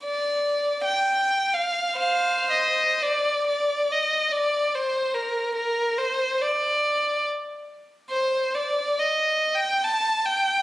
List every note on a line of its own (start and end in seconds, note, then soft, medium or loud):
0.05 0.81 D5 soft
0.85 1.53 G5 soft
1.53 1.97 F5 soft
1.98 3.04 C5 medium
1.98 2.47 F5 medium
2.51 3.04 D#5 medium
3.03 3.46 D5 medium
3.48 3.90 D5 medium
3.92 4.33 D#5 soft
4.32 4.73 D5 medium
4.75 5.16 C5 soft
5.14 5.54 A#4 soft
5.55 5.97 A#4 medium
5.98 6.41 C5 medium
6.41 7.26 D5 soft
8.11 8.52 C5 medium
8.55 8.98 D5 soft
8.99 9.56 D#5 soft
9.55 9.84 G5 medium
9.84 10.26 A5 medium
10.26 10.62 G5 medium